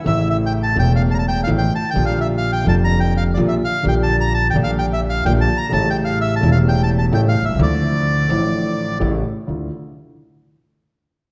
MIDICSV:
0, 0, Header, 1, 4, 480
1, 0, Start_track
1, 0, Key_signature, -1, "minor"
1, 0, Tempo, 470958
1, 57, Time_signature, 4, 2, 24, 8
1, 11533, End_track
2, 0, Start_track
2, 0, Title_t, "Bandoneon"
2, 0, Program_c, 0, 23
2, 69, Note_on_c, 0, 76, 100
2, 288, Note_off_c, 0, 76, 0
2, 307, Note_on_c, 0, 76, 89
2, 378, Note_off_c, 0, 76, 0
2, 470, Note_on_c, 0, 79, 91
2, 540, Note_off_c, 0, 79, 0
2, 644, Note_on_c, 0, 81, 100
2, 783, Note_off_c, 0, 81, 0
2, 807, Note_on_c, 0, 79, 95
2, 945, Note_off_c, 0, 79, 0
2, 976, Note_on_c, 0, 77, 86
2, 1041, Note_off_c, 0, 77, 0
2, 1132, Note_on_c, 0, 81, 96
2, 1159, Note_off_c, 0, 81, 0
2, 1165, Note_on_c, 0, 82, 82
2, 1195, Note_off_c, 0, 82, 0
2, 1211, Note_on_c, 0, 81, 97
2, 1280, Note_off_c, 0, 81, 0
2, 1307, Note_on_c, 0, 79, 99
2, 1437, Note_off_c, 0, 79, 0
2, 1465, Note_on_c, 0, 77, 90
2, 1529, Note_off_c, 0, 77, 0
2, 1613, Note_on_c, 0, 79, 86
2, 1766, Note_off_c, 0, 79, 0
2, 1788, Note_on_c, 0, 81, 99
2, 1934, Note_off_c, 0, 81, 0
2, 1943, Note_on_c, 0, 79, 87
2, 2092, Note_off_c, 0, 79, 0
2, 2097, Note_on_c, 0, 77, 84
2, 2235, Note_off_c, 0, 77, 0
2, 2250, Note_on_c, 0, 76, 81
2, 2318, Note_off_c, 0, 76, 0
2, 2423, Note_on_c, 0, 77, 86
2, 2559, Note_off_c, 0, 77, 0
2, 2572, Note_on_c, 0, 79, 98
2, 2714, Note_off_c, 0, 79, 0
2, 2739, Note_on_c, 0, 81, 94
2, 2806, Note_off_c, 0, 81, 0
2, 2898, Note_on_c, 0, 82, 94
2, 3053, Note_off_c, 0, 82, 0
2, 3058, Note_on_c, 0, 79, 86
2, 3198, Note_off_c, 0, 79, 0
2, 3234, Note_on_c, 0, 77, 93
2, 3299, Note_off_c, 0, 77, 0
2, 3407, Note_on_c, 0, 74, 78
2, 3469, Note_off_c, 0, 74, 0
2, 3550, Note_on_c, 0, 76, 86
2, 3615, Note_off_c, 0, 76, 0
2, 3717, Note_on_c, 0, 77, 101
2, 3923, Note_off_c, 0, 77, 0
2, 3957, Note_on_c, 0, 79, 95
2, 4021, Note_off_c, 0, 79, 0
2, 4108, Note_on_c, 0, 81, 99
2, 4244, Note_off_c, 0, 81, 0
2, 4288, Note_on_c, 0, 82, 88
2, 4414, Note_off_c, 0, 82, 0
2, 4425, Note_on_c, 0, 81, 98
2, 4562, Note_off_c, 0, 81, 0
2, 4589, Note_on_c, 0, 79, 92
2, 4654, Note_off_c, 0, 79, 0
2, 4728, Note_on_c, 0, 77, 97
2, 4798, Note_off_c, 0, 77, 0
2, 4880, Note_on_c, 0, 79, 94
2, 4952, Note_off_c, 0, 79, 0
2, 5027, Note_on_c, 0, 76, 89
2, 5101, Note_off_c, 0, 76, 0
2, 5193, Note_on_c, 0, 77, 89
2, 5344, Note_off_c, 0, 77, 0
2, 5357, Note_on_c, 0, 79, 97
2, 5429, Note_off_c, 0, 79, 0
2, 5513, Note_on_c, 0, 81, 96
2, 5680, Note_off_c, 0, 81, 0
2, 5680, Note_on_c, 0, 82, 91
2, 5827, Note_off_c, 0, 82, 0
2, 5841, Note_on_c, 0, 81, 108
2, 6003, Note_off_c, 0, 81, 0
2, 6016, Note_on_c, 0, 79, 85
2, 6083, Note_off_c, 0, 79, 0
2, 6163, Note_on_c, 0, 77, 83
2, 6306, Note_off_c, 0, 77, 0
2, 6330, Note_on_c, 0, 76, 99
2, 6470, Note_off_c, 0, 76, 0
2, 6483, Note_on_c, 0, 81, 92
2, 6625, Note_off_c, 0, 81, 0
2, 6644, Note_on_c, 0, 77, 87
2, 6712, Note_off_c, 0, 77, 0
2, 6815, Note_on_c, 0, 79, 88
2, 6951, Note_off_c, 0, 79, 0
2, 6964, Note_on_c, 0, 81, 97
2, 7032, Note_off_c, 0, 81, 0
2, 7120, Note_on_c, 0, 81, 90
2, 7189, Note_off_c, 0, 81, 0
2, 7282, Note_on_c, 0, 79, 86
2, 7350, Note_off_c, 0, 79, 0
2, 7424, Note_on_c, 0, 77, 89
2, 7589, Note_off_c, 0, 77, 0
2, 7592, Note_on_c, 0, 76, 77
2, 7753, Note_off_c, 0, 76, 0
2, 7770, Note_on_c, 0, 74, 90
2, 9156, Note_off_c, 0, 74, 0
2, 11533, End_track
3, 0, Start_track
3, 0, Title_t, "Grand piano"
3, 0, Program_c, 1, 0
3, 44, Note_on_c, 1, 49, 81
3, 53, Note_on_c, 1, 52, 73
3, 57, Note_on_c, 1, 45, 90
3, 66, Note_on_c, 1, 33, 92
3, 71, Note_on_c, 1, 57, 74
3, 81, Note_on_c, 1, 64, 86
3, 739, Note_off_c, 1, 49, 0
3, 743, Note_off_c, 1, 52, 0
3, 745, Note_off_c, 1, 45, 0
3, 750, Note_off_c, 1, 33, 0
3, 752, Note_off_c, 1, 57, 0
3, 757, Note_off_c, 1, 64, 0
3, 769, Note_on_c, 1, 49, 71
3, 786, Note_on_c, 1, 52, 75
3, 791, Note_on_c, 1, 28, 88
3, 792, Note_on_c, 1, 40, 92
3, 797, Note_on_c, 1, 57, 69
3, 815, Note_on_c, 1, 64, 79
3, 1464, Note_off_c, 1, 49, 0
3, 1473, Note_off_c, 1, 52, 0
3, 1475, Note_off_c, 1, 28, 0
3, 1476, Note_off_c, 1, 40, 0
3, 1478, Note_off_c, 1, 57, 0
3, 1487, Note_off_c, 1, 64, 0
3, 1500, Note_on_c, 1, 52, 66
3, 1501, Note_on_c, 1, 33, 90
3, 1502, Note_on_c, 1, 45, 85
3, 1503, Note_on_c, 1, 49, 71
3, 1504, Note_on_c, 1, 57, 72
3, 1509, Note_on_c, 1, 64, 87
3, 1707, Note_off_c, 1, 52, 0
3, 1708, Note_off_c, 1, 33, 0
3, 1708, Note_off_c, 1, 45, 0
3, 1708, Note_off_c, 1, 49, 0
3, 1709, Note_off_c, 1, 57, 0
3, 1711, Note_off_c, 1, 64, 0
3, 1971, Note_on_c, 1, 50, 77
3, 1989, Note_on_c, 1, 55, 72
3, 1993, Note_on_c, 1, 34, 87
3, 1994, Note_on_c, 1, 46, 92
3, 2002, Note_on_c, 1, 58, 70
3, 2014, Note_on_c, 1, 65, 87
3, 2669, Note_off_c, 1, 50, 0
3, 2678, Note_off_c, 1, 55, 0
3, 2680, Note_off_c, 1, 34, 0
3, 2681, Note_off_c, 1, 46, 0
3, 2685, Note_off_c, 1, 58, 0
3, 2690, Note_off_c, 1, 65, 0
3, 2692, Note_on_c, 1, 50, 81
3, 2706, Note_on_c, 1, 55, 73
3, 2715, Note_on_c, 1, 29, 96
3, 2716, Note_on_c, 1, 41, 84
3, 2723, Note_on_c, 1, 58, 75
3, 2736, Note_on_c, 1, 65, 80
3, 3392, Note_off_c, 1, 50, 0
3, 3399, Note_off_c, 1, 55, 0
3, 3403, Note_off_c, 1, 29, 0
3, 3404, Note_off_c, 1, 41, 0
3, 3407, Note_off_c, 1, 58, 0
3, 3413, Note_off_c, 1, 65, 0
3, 3433, Note_on_c, 1, 55, 72
3, 3434, Note_on_c, 1, 50, 74
3, 3437, Note_on_c, 1, 46, 92
3, 3439, Note_on_c, 1, 34, 94
3, 3441, Note_on_c, 1, 58, 69
3, 3446, Note_on_c, 1, 65, 84
3, 3639, Note_off_c, 1, 50, 0
3, 3639, Note_off_c, 1, 55, 0
3, 3641, Note_off_c, 1, 46, 0
3, 3642, Note_off_c, 1, 34, 0
3, 3643, Note_off_c, 1, 58, 0
3, 3645, Note_off_c, 1, 65, 0
3, 3900, Note_on_c, 1, 50, 82
3, 3911, Note_on_c, 1, 55, 71
3, 3915, Note_on_c, 1, 34, 86
3, 3916, Note_on_c, 1, 46, 98
3, 3925, Note_on_c, 1, 58, 76
3, 3936, Note_on_c, 1, 67, 85
3, 4593, Note_off_c, 1, 50, 0
3, 4599, Note_off_c, 1, 55, 0
3, 4601, Note_off_c, 1, 34, 0
3, 4602, Note_off_c, 1, 46, 0
3, 4606, Note_off_c, 1, 58, 0
3, 4612, Note_off_c, 1, 67, 0
3, 4623, Note_on_c, 1, 50, 84
3, 4631, Note_on_c, 1, 55, 69
3, 4640, Note_on_c, 1, 34, 96
3, 4642, Note_on_c, 1, 46, 98
3, 4650, Note_on_c, 1, 58, 72
3, 4660, Note_on_c, 1, 67, 91
3, 5314, Note_off_c, 1, 50, 0
3, 5318, Note_off_c, 1, 55, 0
3, 5323, Note_off_c, 1, 34, 0
3, 5324, Note_off_c, 1, 46, 0
3, 5328, Note_off_c, 1, 58, 0
3, 5333, Note_off_c, 1, 67, 0
3, 5350, Note_on_c, 1, 50, 77
3, 5352, Note_on_c, 1, 58, 68
3, 5354, Note_on_c, 1, 46, 92
3, 5354, Note_on_c, 1, 55, 71
3, 5355, Note_on_c, 1, 34, 88
3, 5357, Note_on_c, 1, 67, 80
3, 5555, Note_off_c, 1, 50, 0
3, 5556, Note_off_c, 1, 58, 0
3, 5557, Note_off_c, 1, 46, 0
3, 5557, Note_off_c, 1, 55, 0
3, 5558, Note_off_c, 1, 34, 0
3, 5559, Note_off_c, 1, 67, 0
3, 5803, Note_on_c, 1, 49, 82
3, 5819, Note_on_c, 1, 55, 75
3, 5822, Note_on_c, 1, 33, 93
3, 5826, Note_on_c, 1, 45, 89
3, 5830, Note_on_c, 1, 57, 76
3, 5846, Note_on_c, 1, 64, 82
3, 6498, Note_off_c, 1, 49, 0
3, 6507, Note_off_c, 1, 55, 0
3, 6508, Note_off_c, 1, 33, 0
3, 6510, Note_off_c, 1, 45, 0
3, 6512, Note_off_c, 1, 57, 0
3, 6520, Note_off_c, 1, 64, 0
3, 6530, Note_on_c, 1, 49, 76
3, 6542, Note_on_c, 1, 55, 71
3, 6551, Note_on_c, 1, 28, 97
3, 6551, Note_on_c, 1, 40, 88
3, 6558, Note_on_c, 1, 57, 72
3, 6575, Note_on_c, 1, 64, 90
3, 7220, Note_off_c, 1, 49, 0
3, 7227, Note_off_c, 1, 55, 0
3, 7231, Note_off_c, 1, 28, 0
3, 7231, Note_off_c, 1, 40, 0
3, 7235, Note_off_c, 1, 57, 0
3, 7243, Note_off_c, 1, 64, 0
3, 7255, Note_on_c, 1, 33, 87
3, 7257, Note_on_c, 1, 55, 70
3, 7260, Note_on_c, 1, 45, 87
3, 7262, Note_on_c, 1, 49, 80
3, 7262, Note_on_c, 1, 57, 70
3, 7262, Note_on_c, 1, 64, 85
3, 7462, Note_off_c, 1, 33, 0
3, 7463, Note_off_c, 1, 55, 0
3, 7464, Note_off_c, 1, 45, 0
3, 7465, Note_off_c, 1, 49, 0
3, 7465, Note_off_c, 1, 57, 0
3, 7465, Note_off_c, 1, 64, 0
3, 7566, Note_on_c, 1, 35, 53
3, 7626, Note_off_c, 1, 35, 0
3, 7628, Note_on_c, 1, 36, 67
3, 7686, Note_off_c, 1, 36, 0
3, 7698, Note_on_c, 1, 37, 73
3, 7711, Note_on_c, 1, 50, 73
3, 7727, Note_off_c, 1, 50, 0
3, 7728, Note_on_c, 1, 53, 73
3, 7735, Note_on_c, 1, 50, 95
3, 7738, Note_on_c, 1, 38, 93
3, 7743, Note_on_c, 1, 57, 70
3, 7751, Note_off_c, 1, 37, 0
3, 7754, Note_on_c, 1, 64, 85
3, 8416, Note_off_c, 1, 53, 0
3, 8420, Note_off_c, 1, 50, 0
3, 8421, Note_off_c, 1, 38, 0
3, 8424, Note_off_c, 1, 57, 0
3, 8429, Note_off_c, 1, 64, 0
3, 8437, Note_on_c, 1, 50, 75
3, 8450, Note_on_c, 1, 53, 68
3, 8453, Note_on_c, 1, 33, 86
3, 8458, Note_on_c, 1, 45, 92
3, 8464, Note_on_c, 1, 57, 65
3, 8476, Note_on_c, 1, 64, 78
3, 9136, Note_off_c, 1, 50, 0
3, 9143, Note_off_c, 1, 53, 0
3, 9144, Note_off_c, 1, 33, 0
3, 9147, Note_off_c, 1, 45, 0
3, 9149, Note_off_c, 1, 57, 0
3, 9156, Note_off_c, 1, 64, 0
3, 9168, Note_on_c, 1, 55, 64
3, 9171, Note_on_c, 1, 49, 70
3, 9172, Note_on_c, 1, 33, 88
3, 9174, Note_on_c, 1, 57, 67
3, 9175, Note_on_c, 1, 64, 79
3, 9178, Note_on_c, 1, 45, 89
3, 9379, Note_off_c, 1, 55, 0
3, 9381, Note_off_c, 1, 33, 0
3, 9381, Note_off_c, 1, 49, 0
3, 9382, Note_off_c, 1, 57, 0
3, 9383, Note_off_c, 1, 64, 0
3, 9384, Note_off_c, 1, 45, 0
3, 9650, Note_on_c, 1, 64, 52
3, 9653, Note_on_c, 1, 65, 60
3, 9656, Note_on_c, 1, 62, 54
3, 9658, Note_on_c, 1, 38, 60
3, 9859, Note_off_c, 1, 64, 0
3, 9860, Note_off_c, 1, 65, 0
3, 9862, Note_off_c, 1, 62, 0
3, 9863, Note_off_c, 1, 38, 0
3, 11533, End_track
4, 0, Start_track
4, 0, Title_t, "Upright bass"
4, 0, Program_c, 2, 32
4, 60, Note_on_c, 2, 33, 99
4, 746, Note_off_c, 2, 33, 0
4, 778, Note_on_c, 2, 28, 96
4, 1469, Note_off_c, 2, 28, 0
4, 1505, Note_on_c, 2, 33, 106
4, 1710, Note_off_c, 2, 33, 0
4, 1995, Note_on_c, 2, 34, 98
4, 2681, Note_off_c, 2, 34, 0
4, 2716, Note_on_c, 2, 29, 99
4, 3403, Note_off_c, 2, 29, 0
4, 3436, Note_on_c, 2, 34, 105
4, 3640, Note_off_c, 2, 34, 0
4, 3925, Note_on_c, 2, 34, 94
4, 4606, Note_off_c, 2, 34, 0
4, 4644, Note_on_c, 2, 34, 104
4, 5324, Note_off_c, 2, 34, 0
4, 5360, Note_on_c, 2, 34, 112
4, 5560, Note_off_c, 2, 34, 0
4, 5836, Note_on_c, 2, 33, 101
4, 6515, Note_off_c, 2, 33, 0
4, 6554, Note_on_c, 2, 28, 102
4, 7233, Note_off_c, 2, 28, 0
4, 7263, Note_on_c, 2, 33, 101
4, 7466, Note_off_c, 2, 33, 0
4, 7562, Note_on_c, 2, 35, 52
4, 7620, Note_off_c, 2, 35, 0
4, 7626, Note_on_c, 2, 36, 65
4, 7685, Note_off_c, 2, 36, 0
4, 7690, Note_on_c, 2, 37, 78
4, 7735, Note_off_c, 2, 37, 0
4, 7741, Note_on_c, 2, 38, 100
4, 8423, Note_off_c, 2, 38, 0
4, 8457, Note_on_c, 2, 33, 93
4, 9146, Note_off_c, 2, 33, 0
4, 9185, Note_on_c, 2, 33, 100
4, 9388, Note_off_c, 2, 33, 0
4, 9668, Note_on_c, 2, 38, 56
4, 9868, Note_off_c, 2, 38, 0
4, 11533, End_track
0, 0, End_of_file